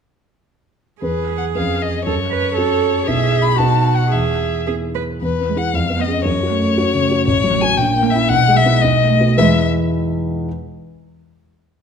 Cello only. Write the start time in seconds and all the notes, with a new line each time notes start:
1.01 G#4
2.06 A4
2.31 B4
2.56 A4
3.07 G#4
3.57 F#4
4.11 G#4
4.67 G#4
4.95 B4
5.50 G#3
6.00 B3
6.50 A3
7.01 A3
7.51 F#3
8.03 A#3
8.55 G#3
9.10 A3
9.38 G#3